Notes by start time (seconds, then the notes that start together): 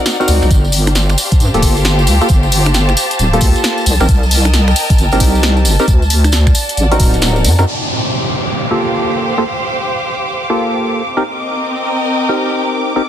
Already playing: C4 D#4 F#4 A#4 D5 F#5
0.06 snare, closed hi-hat, tambourine
0.20 C4 D#4 F#4 A#4, tambourine
0.28 D2, open hi-hat, tambourine
0.42 C2, finger snap, tambourine
0.50 G1 G4 A5, kick, closed hi-hat, tambourine
0.64 tambourine
0.72 C5 F5, open hi-hat, tambourine
0.87 finger snap, closed hi-hat, tambourine, high conga
0.95 snare, closed hi-hat, tambourine
1.09 finger snap, tambourine
1.18 open hi-hat, tambourine
1.32 kick, closed hi-hat, tambourine
1.40 G2, closed hi-hat, tambourine
1.54 D1 A#3 F4 G4 A4, closed hi-hat, tambourine
1.62 G1, kick, open hi-hat, tambourine
1.77 tambourine
1.85 snare, closed hi-hat, tambourine
1.99 tambourine
2.07 D2, open hi-hat, tambourine
2.21 A#3 F4 G4 A4, tambourine
2.29 G1, kick, closed hi-hat, tambourine
2.43 tambourine
2.52 open hi-hat, tambourine
2.65 finger snap, closed hi-hat, tambourine, high conga
2.74 snare, closed hi-hat, tambourine
2.89 finger snap, tambourine
2.97 open hi-hat, tambourine
3.11 closed hi-hat, tambourine
3.19 D1, closed hi-hat, tambourine
3.33 A#3 F4 G4 A4, closed hi-hat, tambourine
3.41 D2, kick, open hi-hat, tambourine
3.56 closed hi-hat, tambourine
3.64 snare, closed hi-hat, tambourine
3.77 tambourine
3.86 C2 A#4, open hi-hat, tambourine
3.96 D#5
4.00 A#1 C4 D#4 G4 A#4, finger snap, tambourine
4.09 C2, kick, closed hi-hat, tambourine
4.23 tambourine
4.31 open hi-hat, tambourine
4.41 G5, finger snap, closed hi-hat, tambourine, high conga
4.53 snare, closed hi-hat, tambourine
4.68 finger snap, tambourine
4.76 open hi-hat, tambourine
4.90 kick, closed hi-hat, tambourine
4.98 G1, closed hi-hat, tambourine
5.12 G1 C4 D#4 G4 A#4, closed hi-hat, tambourine
5.20 C2, kick, open hi-hat, tambourine
5.35 tambourine
5.43 snare, closed hi-hat, tambourine
5.57 tambourine
5.65 G1, open hi-hat, tambourine
5.79 C4 D#4 G4 A#4, tambourine
5.88 D2, kick, closed hi-hat, tambourine
6.02 tambourine
6.10 open hi-hat, tambourine
6.19 D5
6.24 finger snap, closed hi-hat, tambourine, high conga
6.32 snare, closed hi-hat, tambourine
6.47 F#5, finger snap, kick, tambourine
6.55 open hi-hat, tambourine
6.69 closed hi-hat, tambourine
6.77 A1, closed hi-hat, tambourine
6.92 C4 D#4 F#4 A#4, closed hi-hat, tambourine
7.00 D1, kick, open hi-hat, tambourine
7.14 closed hi-hat, tambourine
7.22 snare, closed hi-hat, tambourine
7.36 tambourine
7.44 F#2, open hi-hat, tambourine
7.59 C4 D#4 F#4 A#4, finger snap, tambourine
7.67 G4 D6, downlifter
7.89 C5
8.25 F5
8.71 A#3 F4 G4 A4
9.38 A#3 F4 G4 A4
10.50 A#3 F4 G4 A4
11.03 C4
11.12 D#5
11.17 C4 D#4 G4 A#4
11.29 A#4
11.55 G5
12.29 C4 D#4 G4 A#4
12.96 C4 D#4 G4 A#4
13.04 A4